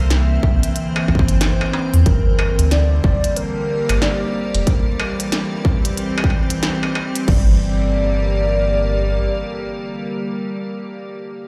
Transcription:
Already playing: ambient pad E3 A#3 C4 A#4, synth texture C5, soft synth lead E5
0.00 sub bass C2
0.10 snare, closed hi-hat
0.43 sub bass C2, kick
0.63 ambient pad C5, closed hi-hat
0.76 closed hi-hat
0.96 struck metal
1.08 sub bass A#1, kick, struck metal
1.15 kick
1.19 kick
1.28 sub bass G1, closed hi-hat
1.41 snare, closed hi-hat
1.61 struck metal
1.73 struck metal
1.94 sub bass E2, closed hi-hat
2.06 sub bass G1, ambient pad D3, soft synth lead A#4, kick, closed hi-hat
2.39 struck metal
2.47 ambient pad G3
2.52 ambient pad A#3
2.59 sub bass D2, closed hi-hat
2.71 soft synth lead D5, snare, closed hi-hat
3.04 sub bass G1, kick
3.24 ambient pad G4 A#4, closed hi-hat
3.36 soft synth lead A#4, closed hi-hat
3.89 sub bass G1, closed hi-hat, struck metal
4.02 soft synth lead D5, snare
4.55 sub bass F1, closed hi-hat
4.67 ambient pad E3, kick, closed hi-hat
4.96 ambient pad C4, struck metal
5.20 closed hi-hat
5.32 snare, closed hi-hat
5.59 ambient pad C5
5.65 kick
5.85 closed hi-hat
5.97 closed hi-hat
6.18 struck metal
6.24 kick
6.30 struck metal
6.50 closed hi-hat
6.63 snare, closed hi-hat
6.83 struck metal
6.95 struck metal
7.15 closed hi-hat
7.28 sub bass G1, ambient pad D3, soft synth lead D5, kick, crash
7.40 ambient pad G3
7.51 ambient pad A#3
7.58 ambient pad G4
7.69 ambient pad A#4

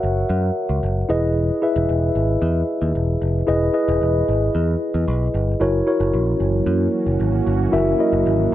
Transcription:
Already playing: tine electric piano F#4 A#4 C#5 E5 F#5
0.03 picked electric bass F#1
0.29 picked electric bass F#2
0.69 picked electric bass C#2
0.83 picked electric bass F#1
1.09 picked electric bass E1, tine electric piano E4 G#4 B4 D#5
1.62 tine electric piano E4 G#4 B4 E5
1.76 picked electric bass E1
1.89 picked electric bass E1
2.15 picked electric bass G#1
2.42 picked electric bass E2
2.82 picked electric bass D#2
2.95 picked electric bass E1
3.22 picked electric bass F1
3.47 picked electric bass E1, tine electric piano E4 G#4 B4 D#5
3.73 tine electric piano E4 G#4 B4 D#5
3.88 picked electric bass E1
4.01 picked electric bass E1
4.28 picked electric bass G#1
4.55 picked electric bass E2
4.94 picked electric bass E2
5.08 picked electric bass B1
5.34 picked electric bass G1
5.60 picked electric bass F#1, analog synth pad E3 F#3 A#3 C#4 F#4, tine electric piano E4 F#4 A#4 C#5
5.87 tine electric piano E4 F#4 A#4 C#5
6.00 picked electric bass F#1
6.13 picked electric bass A#1
6.40 picked electric bass F#1
6.66 picked electric bass F#2
7.06 picked electric bass F#1
7.20 picked electric bass G#1
7.47 picked electric bass G1
7.72 picked electric bass F#1, tine electric piano E4 F#4 A#4 E5
7.99 tine electric piano E4 F#4 A#4 D#5
8.12 picked electric bass F#1
8.26 picked electric bass G#1

